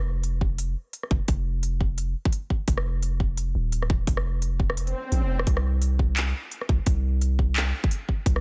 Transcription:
Already playing: 808-style bass F1
0.23 closed hi-hat
0.41 kick
0.58 closed hi-hat
0.93 closed hi-hat
1.03 cross-stick
1.11 808-style bass F1, kick
1.28 808-style bass F1, kick, closed hi-hat
1.63 closed hi-hat
1.81 kick
1.98 closed hi-hat
2.25 kick
2.32 closed hi-hat
2.50 kick
2.68 808-style bass F1, kick, closed hi-hat
2.78 cross-stick
3.02 closed hi-hat
3.20 kick
3.37 closed hi-hat
3.55 808-style bass D#1
3.72 closed hi-hat
3.82 cross-stick
3.90 kick
4.07 808-style bass F1, kick, closed hi-hat
4.17 cross-stick
4.42 closed hi-hat
4.60 kick
4.70 cross-stick
4.77 closed hi-hat, swell
4.87 closed hi-hat
5.12 808-style bass A#1, closed hi-hat
5.22 808-style bass F1
5.39 cross-stick
5.47 808-style bass C2, kick, closed hi-hat
5.57 cross-stick
5.82 closed hi-hat
5.99 kick
6.17 clap, closed hi-hat
6.51 closed hi-hat
6.61 cross-stick
6.69 808-style bass C2, kick
6.86 808-style bass C2, kick, closed hi-hat
7.21 closed hi-hat
7.39 kick
7.56 clap, closed hi-hat
7.84 kick
7.91 closed hi-hat
8.09 kick
8.26 808-style bass C2, kick, closed hi-hat
8.36 cross-stick

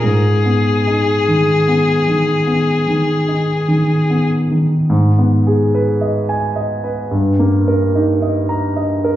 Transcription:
0.04 grand piano G#2, violin G#4
0.46 grand piano B3
0.87 grand piano D#4
1.28 grand piano D#3
1.68 grand piano B3
2.08 grand piano D#3
2.47 grand piano B3
2.87 grand piano D#3
3.28 grand piano D#4
3.68 grand piano D#3
4.10 grand piano B3
4.51 grand piano D#3
4.90 grand piano G#2
5.18 grand piano B3
5.47 grand piano G#4
5.74 grand piano B4
6.01 grand piano D#5
6.29 grand piano G#5
6.56 grand piano D#5
6.84 grand piano B4
7.11 grand piano G2
7.39 grand piano A#3
7.68 grand piano A#4
7.95 grand piano D#4
8.22 grand piano D#5
8.49 grand piano A#5
8.76 grand piano D#5
9.04 grand piano A#4

